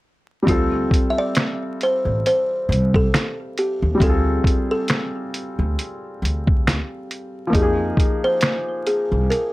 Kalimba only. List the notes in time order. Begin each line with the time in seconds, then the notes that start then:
0.49 F4
1.10 E5
1.18 D5
1.83 C5
2.27 C5
2.96 A4
3.59 G4
4.03 A4
4.71 A4
7.55 G#4
8.24 C5
8.87 G#4
9.30 A#4